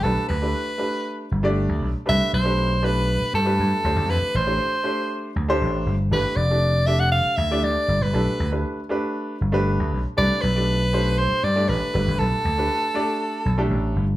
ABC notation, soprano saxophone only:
X:1
M:4/4
L:1/16
Q:1/4=118
K:Gmix
V:1 name="Soprano saxophone"
A2 B8 z6 | e2 c4 B4 A6 | B2 c8 z6 | B2 d4 e ^f =f2 e2 d3 B- |
B3 z12 z | d2 B6 c2 d2 B4 | A12 z4 |]